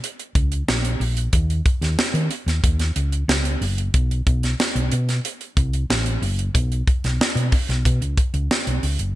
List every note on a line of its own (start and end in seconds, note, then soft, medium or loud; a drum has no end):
0.04 closed hi-hat loud
0.19 closed hi-hat medium
0.35 0.62 C#2 medium
0.35 kick loud
0.35 closed hi-hat medium
0.52 closed hi-hat medium
0.68 0.95 A#1 loud
0.68 snare loud
0.85 closed hi-hat medium
1.00 1.27 A#1 loud
1.00 open hi-hat medium
1.17 closed hi-hat medium
1.33 1.60 D#2 loud
1.33 kick loud
1.33 closed hi-hat loud
1.50 closed hi-hat soft
1.66 kick loud
1.66 closed hi-hat medium
1.81 1.95 D#2 medium
1.81 snare soft
1.81 closed hi-hat medium
1.99 snare loud
2.14 2.27 D#3 loud
2.14 closed hi-hat medium
2.31 closed hi-hat medium
2.46 2.60 D#2 loud
2.46 snare soft
2.46 closed hi-hat medium
2.64 2.90 D#2 loud
2.64 kick loud
2.64 closed hi-hat loud
2.79 snare soft
2.79 closed hi-hat medium
2.96 3.23 C#2 loud
2.96 closed hi-hat medium
3.12 closed hi-hat soft
3.28 3.55 C#2 medium
3.28 snare loud
3.45 closed hi-hat medium
3.61 3.88 F#1 medium
3.61 open hi-hat medium
3.78 closed hi-hat medium
3.94 4.21 B1 loud
3.94 kick loud
3.94 closed hi-hat loud
4.11 closed hi-hat soft
4.27 4.53 B1 loud
4.27 kick loud
4.27 closed hi-hat medium
4.43 snare soft
4.43 closed hi-hat soft
4.60 snare loud
4.75 4.89 B1 loud
4.75 closed hi-hat medium
4.92 5.19 B2 medium
4.92 closed hi-hat medium
5.09 snare soft
5.09 closed hi-hat medium
5.25 closed hi-hat loud
5.41 closed hi-hat medium
5.57 5.83 C2 medium
5.57 kick loud
5.57 closed hi-hat medium
5.73 closed hi-hat soft
5.90 6.16 A1 medium
5.90 snare loud
6.06 closed hi-hat medium
6.22 6.48 F#1 loud
6.22 open hi-hat medium
6.39 closed hi-hat medium
6.54 6.81 B1 loud
6.54 kick loud
6.54 closed hi-hat loud
6.72 closed hi-hat soft
6.87 kick loud
6.87 closed hi-hat medium
7.04 7.17 B1 medium
7.04 snare soft
7.04 closed hi-hat soft
7.21 snare loud
7.35 7.49 B2 medium
7.35 closed hi-hat medium
7.52 kick loud
7.52 open hi-hat medium
7.69 7.82 B1 medium
7.69 snare soft
7.69 closed hi-hat medium
7.85 7.99 B2 loud
7.85 kick loud
7.85 closed hi-hat loud
8.01 8.14 C#2 medium
8.01 closed hi-hat medium
8.18 kick loud
8.18 closed hi-hat medium
8.34 8.47 C#2 medium
8.34 closed hi-hat soft
8.51 snare loud
8.67 8.80 B1 medium
8.67 closed hi-hat medium
8.83 8.96 C#2 medium
8.83 open hi-hat medium
8.99 9.12 F#1 medium
8.99 closed hi-hat medium